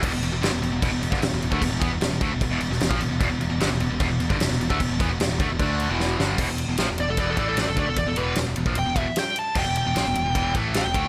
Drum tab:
CC |x-x-x-x-x-x-x-x-|x-x-x-x-x-x-x-x-|x-x-x-x-x-x-x-x-|x-x-x-x-x-x-----|
RD |----------------|----------------|----------------|----------------|
SD |----o------ooo--|----o------oo---|----o-------oo--|----o-------o-o-|
BD |o-------o--o---o|o-o---o-o----o--|o-------o--o---o|o-o---o-o-------|

CC |x---------------|----------------|x---------------|
RD |--x-x-x-x-x-x-x-|x-x-x-x-x-x-x-x-|--x-x-x-x-x-x-x-|
SD |----o-------o---|----o-------o---|----o-------o---|
BD |o-------o-o---o-|o------o--o-----|o-------o-o---o-|